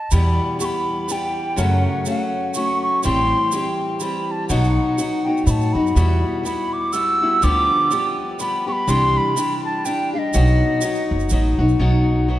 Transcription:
Already playing: flute A5
0.11 steel-string acoustic guitar E2 B2 E3 G3 B3 G4, upright bass E2, flute B5, shaker
0.59 steel-string acoustic guitar E3 G3 B3 G4, flute C#6, shaker
0.65 flute B5
1.08 steel-string acoustic guitar E3 G3 B3 G4, flute G5, shaker
1.56 steel-string acoustic guitar F#2 C#3 F#3 A3 C#4 F#4, upright bass F#2, flute F#5, shaker
1.87 flute F#5
2.05 steel-string acoustic guitar F#3 A3 C#4 F#4, flute F#5, shaker
2.54 steel-string acoustic guitar F#3 A3 C#4 F#4, flute C#6, shaker
2.82 flute C#6
3.03 upright bass A1, steel-string acoustic guitar A2 E3 G3 C4 G4, flute C6, shaker
3.52 steel-string acoustic guitar E3 G3 C4 G4, shaker
4.00 steel-string acoustic guitar E3 G3 C4 G4, flute B5, shaker
4.28 flute A5 B5
4.49 upright bass B1, steel-string acoustic guitar B2 F#3 B3 D#4 F#4, flute F#5, shaker
4.64 shaker
4.77 flute F#5
4.98 steel-string acoustic guitar F#3 B3 D#4 F#4, shaker
5.25 steel-string acoustic guitar D#4 F#4, flute G5
5.29 steel-string acoustic guitar B3
5.37 shaker
5.45 upright bass A2, steel-string acoustic guitar F#3 B3 D#4 F#4, flute B5, shaker
5.51 flute A5
5.61 shaker
5.73 upright bass F#2, steel-string acoustic guitar D#4 F#4, flute B5
5.78 steel-string acoustic guitar B3
5.87 shaker
5.95 steel-string acoustic guitar E2 B2 G3 B3 E4 F#4, upright bass E2, shaker
6.43 steel-string acoustic guitar G3 B3 E4 F#4, flute B5, shaker
6.73 flute D6
6.93 steel-string acoustic guitar G3 B3 E4 F#4, flute E6, shaker
7.21 steel-string acoustic guitar G3 B3 E4 F#4
7.42 upright bass D2, steel-string acoustic guitar D3 F3 G3 B3 G4, flute D6, shaker
7.90 steel-string acoustic guitar F3 G3 B3 G4, shaker
8.39 steel-string acoustic guitar F3 G3 B3 G4, flute B5, shaker
8.67 steel-string acoustic guitar G3 B3 G4, flute C#6
8.72 flute B5
8.88 upright bass C2, steel-string acoustic guitar C3 E3 G3 D4 G4, flute C6, shaker
9.17 flute B5
9.36 steel-string acoustic guitar E3 G3 D4 G4, shaker
9.65 flute A5
9.85 steel-string acoustic guitar E3 G3 D4 G4, flute G5, shaker
10.14 steel-string acoustic guitar G3 D4 G4, flute F5
10.19 flute D#5
10.34 upright bass B1, steel-string acoustic guitar B2 F#3 B3 D#4 F#4, shaker
10.47 shaker
10.81 steel-string acoustic guitar F#3 B3 D#4 F#4, shaker
10.95 shaker
11.11 upright bass F#1
11.19 shaker
11.29 upright bass A1, steel-string acoustic guitar F#3 B3 D#4, shaker
11.34 steel-string acoustic guitar F#4
11.59 upright bass B1, steel-string acoustic guitar B3 D#4 F#4
11.69 shaker
11.79 upright bass B1, steel-string acoustic guitar B2 F#3 B3 D#4 F#4
12.28 steel-string acoustic guitar F#3 B3 D#4 F#4

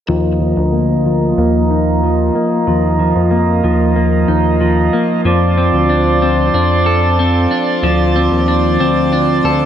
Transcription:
0.09 analog synth bass D#2, clean electric guitar F3, harmonium F4 A#4 D#5 A#5
0.41 clean electric guitar F3
0.57 analog synth bass D2
0.73 clean electric guitar A#3
1.06 clean electric guitar F3
1.38 analog synth bass D#2, clean electric guitar A#3
1.71 clean electric guitar D#4
2.03 clean electric guitar F3
2.35 clean electric guitar A#3
2.67 analog synth bass D#2, clean electric guitar F3
2.99 clean electric guitar F3
3.16 analog synth bass F2
3.31 clean electric guitar A#3
3.64 analog synth bass D#2, clean electric guitar F3
3.96 clean electric guitar A#3
4.28 analog synth bass D#2, clean electric guitar D#4
4.61 clean electric guitar F3
4.93 clean electric guitar A#3
5.25 analog synth bass F2, clean electric guitar F3, harmonium C5 D5 A5
5.58 clean electric guitar C4
5.73 analog synth bass D2
5.89 clean electric guitar D4
6.22 clean electric guitar C4
6.54 analog synth bass F2, clean electric guitar D4
6.86 clean electric guitar A4
7.19 clean electric guitar C4
7.51 clean electric guitar D4
7.83 analog synth bass D2, clean electric guitar F3
8.16 clean electric guitar C4
8.31 analog synth bass D#2
8.48 clean electric guitar D4
8.80 analog synth bass D2, clean electric guitar C4
9.13 clean electric guitar D4
9.44 analog synth bass D2, clean electric guitar A4

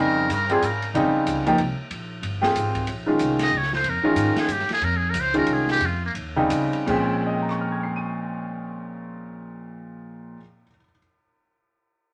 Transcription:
Already playing: upright bass F2, trombone C#3, grand piano C#3 G3 C4 D#4
0.01 muted trumpet A#4
0.29 upright bass G2, trombone C#3, hi-hat pedal, ride
0.34 muted trumpet A#4
0.49 trombone C3, grand piano G3 C4 F4 G#4, ride
0.53 muted trumpet G#4
0.61 upright bass G#2, trombone C#3, muted trumpet A#4, hi-hat pedal, ride
0.82 ride
0.94 upright bass F2, grand piano C#3 G3 C4 D#4, ride
1.15 muted upright bass stroke
1.26 upright bass C#2, hi-hat pedal, ride
1.47 grand piano F3 A#3 D#4 G4, ride
1.58 upright bass C2, ride
1.90 upright bass A#1, ride
2.22 upright bass G1, ride
2.41 grand piano C4 F4 G4 G#4, snare
2.55 upright bass G#1, hi-hat pedal, ride
2.75 kick, ride
2.87 upright bass A#1, ride
3.06 grand piano D#3 G#3 C#4 F4
3.19 upright bass C2, hi-hat pedal, ride
3.39 muted trumpet D#5, snare, ride
3.52 upright bass C#2
3.58 muted trumpet C#5
3.63 snare
3.73 muted trumpet C5, snare
3.84 upright bass F2, ride
3.89 muted trumpet A#4
4.03 grand piano D#3 G#3 C#4 F4, muted upright bass stroke
4.15 upright bass G#2, hi-hat pedal, ride
4.36 muted trumpet G#4, snare, ride
4.48 upright bass G2, hi-hat pedal, ride
4.52 muted trumpet G4
4.59 snare
4.69 snare, ride
4.73 muted trumpet G#4
4.81 upright bass F2, muted trumpet A#4, ride
4.97 muted trumpet G#4
5.10 upright bass C#2, muted trumpet A#4
5.14 hi-hat pedal, ride
5.21 muted trumpet C5
5.34 grand piano D#3 G#3 C#4 F4, muted trumpet A#4, ride
5.46 upright bass C2, ride
5.53 muted trumpet G#4
5.68 muted trumpet G4, snare
5.80 upright bass F2, ride
5.86 muted trumpet F4
6.06 muted trumpet A#3
6.14 upright bass D#2, ride
6.36 grand piano C#3 G3 C4 D#4
6.50 upright bass C#2, hi-hat pedal, ride
6.72 muted upright bass stroke, ride
6.86 upright bass A#1, grand piano A#2 F3 G#3 C4 C#4, kick, crash
7.26 grand piano D#5
7.34 grand piano G5
7.42 grand piano A#5
7.49 grand piano C#6, cross-stick
7.61 grand piano F6
7.72 grand piano G#6
7.83 grand piano C7
7.96 grand piano D#7

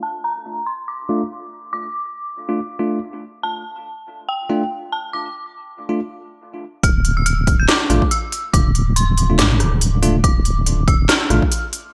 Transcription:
0.03 synth bell A5
0.24 synth bell A#5
0.66 synth bell C6
0.88 synth bell D6
1.09 tine electric piano A3 D4 F4
1.73 synth bell D6
2.49 tine electric piano A3 D4 F4
2.79 tine electric piano A3 D4 F4
3.43 synth bell A5
4.29 synth bell G5
4.49 tine electric piano A3 D4 F4
4.92 synth bell A5
5.13 synth bell D6
5.89 tine electric piano A3 D4 F4
6.83 wobble bass D1, synth bell F6, kick, closed hi-hat
7.05 closed hi-hat
7.17 synth bell E6
7.26 synth bell F6, closed hi-hat
7.47 kick, closed hi-hat
7.60 synth bell G6
7.69 synth bell D6, cross-stick, snare, closed hi-hat
7.90 wobble bass A1, tine electric piano A3 D4 F4, cross-stick, closed hi-hat
8.02 kick
8.11 synth bell E6, closed hi-hat
8.32 open hi-hat
8.53 wobble bass D1, synth bell D6, kick, closed hi-hat
8.75 closed hi-hat
8.96 synth bell C6, closed hi-hat
9.18 closed hi-hat
9.30 tine electric piano A3 D4 F4
9.39 wobble bass A1, synth bell D6, snare, closed hi-hat
9.60 wobble bass D1, cross-stick, closed hi-hat
9.81 closed hi-hat
10.03 tine electric piano A3 D4 F4, open hi-hat
10.24 wobble bass D1, synth bell D6, kick, closed hi-hat
10.45 closed hi-hat
10.66 closed hi-hat
10.88 synth bell E6, kick, closed hi-hat
11.09 synth bell F6, cross-stick, snare, closed hi-hat
11.30 wobble bass A1, tine electric piano A3 D4 F4, cross-stick, closed hi-hat
11.42 kick
11.52 closed hi-hat
11.73 open hi-hat

